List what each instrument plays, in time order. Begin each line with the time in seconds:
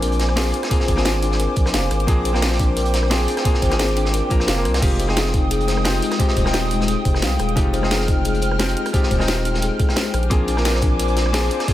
Already playing: sub bass A#1, hollow-body jazz guitar A#3 C4 D4 F4 A#4, analog synth pad C5 G#5 D6
0.02 kalimba A#4, closed hi-hat
0.12 closed hi-hat
0.19 kalimba C5, snare, closed hi-hat
0.29 cross-stick
0.36 hollow-body jazz guitar A#3 C4 D4 F4 G#4, kalimba G#4, snare, closed hi-hat, open hi-hat
0.54 kalimba D4, closed hi-hat
0.63 cross-stick, snare, closed hi-hat
0.70 hollow-body jazz guitar A#3 C4 D4 F4 G#4, kalimba C5, kick, closed hi-hat
0.80 snare
0.88 sub bass G#1, kalimba C5, kick, closed hi-hat
0.96 hollow-body jazz guitar A#3 C4 D4 F4 G#4, cross-stick, snare
1.05 kalimba G#4, snare, closed hi-hat
1.22 kalimba D4, closed hi-hat
1.32 snare
1.40 kalimba A#4, closed hi-hat
1.56 sub bass A#1, kalimba C5, kick, closed hi-hat
1.66 cross-stick, snare
1.74 sub bass F1, kalimba F5, snare, closed hi-hat
1.91 sub bass G#1, kalimba A#4, analog synth pad G5, cross-stick, closed hi-hat
2.00 closed hi-hat
2.07 sub bass A#1, hollow-body jazz guitar A#3 C4 D4 F4 G#4, kalimba D4, kick, closed hi-hat
2.25 kalimba C5, closed hi-hat
2.33 hollow-body jazz guitar A#3 C4 D4 F4 A#4, cross-stick, snare
2.42 kalimba A#4, snare, closed hi-hat
2.52 snare
2.59 kalimba D4, kick, closed hi-hat
2.77 kalimba A#4, closed hi-hat
2.85 closed hi-hat
2.94 kalimba C5, snare, closed hi-hat
3.03 cross-stick
3.10 hollow-body jazz guitar A#3 C4 D4 F4 G#4, kalimba G#4, snare, closed hi-hat, open hi-hat
3.28 kalimba D4, closed hi-hat
3.37 cross-stick, snare, closed hi-hat
3.44 hollow-body jazz guitar A#3 C4 D4 F4 G#4, kalimba C5, kick, closed hi-hat
3.54 snare
3.62 sub bass G#1, kalimba C5, kick, closed hi-hat
3.70 hollow-body jazz guitar A#3 C4 D4 F4 G#4, cross-stick, snare, closed hi-hat
3.79 kalimba G#4, snare, closed hi-hat
3.89 closed hi-hat
3.97 kalimba D4, closed hi-hat
4.05 snare
4.14 kalimba A#4, closed hi-hat
4.30 sub bass A#1, hollow-body jazz guitar A#3 C4 D4 F4 A#4, kick, closed hi-hat
4.40 cross-stick, snare
4.48 sub bass F1, kalimba F5, snare, closed hi-hat
4.56 hollow-body jazz guitar A#3 C4 D4 F4 A#4
4.65 sub bass C2, kalimba A#4, cross-stick, closed hi-hat
4.74 snare, closed hi-hat
4.81 sub bass F1, hollow-body jazz guitar G#3 C4 D#4 F4 G4, analog synth pad G#3 G5 D#6, kalimba D#4, kick, closed hi-hat, crash
4.99 kalimba C5, closed hi-hat
5.07 hollow-body jazz guitar G#3 C4 D#4 F4 G#4, cross-stick, snare
5.17 kalimba G#4, snare, closed hi-hat
5.25 snare
5.34 kalimba D#4, kick, closed hi-hat
5.51 kalimba G#4, closed hi-hat
5.60 closed hi-hat
5.68 kalimba C5, snare, closed hi-hat
5.77 cross-stick
5.84 hollow-body jazz guitar G#3 C4 D#4 F4 G5, kalimba G4, snare, closed hi-hat, open hi-hat
6.02 kalimba D#4, closed hi-hat
6.11 cross-stick, snare, closed hi-hat
6.18 hollow-body jazz guitar G#3 C4 D#4 F4 G4, kalimba C5, kick, closed hi-hat
6.28 snare
6.37 sub bass D#1, kalimba C5, kick, closed hi-hat
6.44 hollow-body jazz guitar G#3 C4 D#4 F4 G5, cross-stick, snare
6.53 kalimba G4, snare, closed hi-hat
6.71 kalimba D#4, closed hi-hat
6.81 snare
6.88 kalimba G#4, closed hi-hat
7.05 sub bass F1, kalimba C5, kick, closed hi-hat
7.14 cross-stick, snare
7.22 sub bass C2, kalimba F5, snare, closed hi-hat
7.39 sub bass D#1, kalimba G#4, cross-stick, closed hi-hat
7.49 closed hi-hat
7.56 sub bass F1, hollow-body jazz guitar G#3 C4 D#4 F4 G4, kalimba D#4, analog synth pad F6, kick, closed hi-hat
7.74 kalimba C5, closed hi-hat
7.81 hollow-body jazz guitar G#3 C4 D#4 F4 G#4, cross-stick, snare
7.91 kalimba G#4, snare, closed hi-hat
8.00 snare
8.08 kalimba D#4, kick, closed hi-hat
8.25 kalimba G#4, closed hi-hat
8.35 closed hi-hat
8.42 kalimba C5, closed hi-hat
8.51 cross-stick
8.59 hollow-body jazz guitar G#3 C4 D#4 F4 G5, kalimba G4, snare, closed hi-hat
8.68 closed hi-hat
8.77 kalimba D#4, closed hi-hat
8.86 cross-stick, closed hi-hat
8.93 hollow-body jazz guitar G#3 C4 D#4 F4 G4, kalimba C5, kick, closed hi-hat
9.03 snare
9.11 sub bass D#1, kalimba C5, kick, closed hi-hat
9.19 hollow-body jazz guitar G#3 C4 D#4 F4 G5, cross-stick, snare
9.27 kalimba G4, snare, closed hi-hat
9.45 kalimba D#4, closed hi-hat
9.54 snare
9.62 kalimba G#4, closed hi-hat
9.79 kalimba G#4, kick, closed hi-hat
9.89 cross-stick, snare
9.96 kalimba C5, snare, closed hi-hat
10.14 sub bass A#1, analog synth pad C5 G#5 D6, kalimba C5, cross-stick, closed hi-hat
10.23 closed hi-hat
10.30 sub bass A#1, hollow-body jazz guitar A#3 C4 D4 F4 G#4, kalimba D4, kick, closed hi-hat
10.48 kalimba D4, closed hi-hat
10.56 hollow-body jazz guitar A#3 C4 D4 F4 A#4, cross-stick, snare
10.65 kalimba A#4, snare, closed hi-hat
10.74 snare
10.82 kalimba D4, kick, closed hi-hat
10.99 kalimba A#4, closed hi-hat
11.08 closed hi-hat
11.17 kalimba C5, snare, closed hi-hat
11.26 cross-stick
11.33 hollow-body jazz guitar A#3 C4 D4 F4 G#4, kalimba G#4, snare, closed hi-hat, open hi-hat
11.51 kalimba D4, closed hi-hat
11.59 cross-stick, snare, closed hi-hat
11.67 hollow-body jazz guitar A#3 C4 D4 F4 G#4, kalimba C5, kick, closed hi-hat